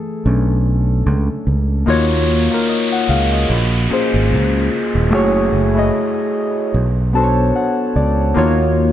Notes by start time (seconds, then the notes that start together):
Already playing: E3 A3 G#4 A4
0.25 B1 A3 C#4 D4
1.06 C#2
1.47 C#2
1.86 D#2 A#3 D#4 F4 F#4 C#5, downlifter
2.50 A#3 D#4 F4 F#4
2.54 A#4
2.69 F#4 D#5
2.92 A#4 F#5
3.09 C#2 G#4 F5
3.33 F#4 D#5
3.50 A#1
3.89 A#3 C#4 F4 G#4
3.93 C5
4.14 G#1
4.31 C#2
4.95 D#1
5.11 F#1 A3 E4 F#4 G#4 C#5
5.52 F#1
5.74 A3 E4 F#4 G#4
5.78 D#5
6.74 B1
7.13 B3 D4 F#4 A4 C5 A5
7.23 C#5
7.56 F#5
7.96 C#2 D5
8.34 D#2 A#3 D#4 F4 F#4 C#5